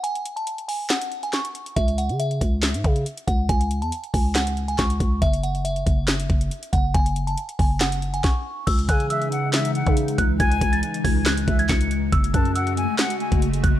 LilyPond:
<<
  \new Staff \with { instrumentName = "Synth bell" } { \time 4/4 \key cis \minor \tempo 4 = 139 gis''8. a''16 r8 gis''8 fis''8. gis''16 cis'''4 | e''8 fis''8 e''2~ e''8 fis''8 | gis''8. a''16 r8 gis''8 fis''8. gis''16 cis'''4 | e''8 fis''8 e''2~ e''8 fis''8 |
gis''8. a''16 r8 gis''8 fis''8. gis''16 cis'''4 | e'''8 fis'''8 e'''2~ e'''8 fis'''8 | gis'''8. a'''16 r8 gis'''8 fis'''8. gis'''16 cis''''4 | e'''8 fis'''8 e'''2~ e'''8 fis'''8 | }
  \new Staff \with { instrumentName = "Flute" } { \time 4/4 \key cis \minor r1 | r1 | r1 | r1 |
r1 | r8 gis''8 e''8 fis''8 e''8 fis''8 r4 | gis''4 r4. e''8 r4 | r8 a''8 fis''8 gis''8 fis''8 gis''8 r4 | }
  \new Staff \with { instrumentName = "Analog synth pad" } { \clef bass \time 4/4 \key cis \minor << { r1 | r1 | r1 | r1 |
r1 | <e gis dis'>1~ | <e gis dis'>1 | <a fis'>1 | } \\ { r1 | r1 | r1 | r1 |
r1 | cis1~ | cis1~ | cis1 | } >> }
  \new Staff \with { instrumentName = "808-style bass" } { \clef bass \time 4/4 \key cis \minor r1 | cis,8. cis8. cis,8. gis,16 cis8 r8 cis,8 | cis,8. e,16 r8 cis,4. cis,8 cis,8 | fis,,4. fis,,4 fis,,8 r8 fis,,8 |
fis,,4 r8 fis,,4. r4 | cis,8 cis2~ cis16 cis8. cis,8 | cis,8 cis,8 r8 cis,4 cis,8 cis,4 | fis,,8 fis,4~ fis,16 r4 fis,,8. fis,,8 | }
  \new DrumStaff \with { instrumentName = "Drums" } \drummode { \time 4/4 hh16 hh16 hh16 hh16 hh16 hh16 hho8 <hc hh sn>16 hh16 hh16 hh16 <hc hh sn>16 hh16 hh16 hh16 | <hh bd>16 hh16 hh16 hh16 hh16 hh16 <hh bd>8 <hc hh sn>16 hh16 <hh bd>16 hh16 hh16 hh16 <hh bd>8 | <hh bd>16 hh16 hh16 hh16 hh16 hh16 <hho bd>8 <hc hh sn>16 hh16 hh16 hh16 <hc hh bd sn>16 hh16 <hh bd>8 | <hh bd>16 hh16 hh16 hh16 hh16 hh16 <hh bd>8 <hc hh sn>16 hh16 <hh bd>16 hh16 hh16 hh16 <hh bd>8 |
<hh bd>16 hh16 hh16 hh16 hh16 hh16 <hho bd>8 <hc hh sn>16 hh16 hh16 hh16 <bd sn>4 | <cymc hh bd>16 hh16 <hh bd>16 hh16 hh16 hh16 hh8 <hc hh sn>16 hh16 hh16 <hh bd>16 hh16 hh16 <hh bd>8 | <hh bd>16 hh16 <hh bd>16 hh16 hh16 hh16 <hho bd>8 <hc hh sn>16 hh16 <hh bd>16 hh16 <hc hh bd sn>16 hh16 hh8 | <hh bd>16 hh16 <hh bd>16 hh16 hh16 hh16 hh8 <hc hh sn>16 hh16 hh16 <hh bd>16 hh16 hh16 <hh bd>8 | }
>>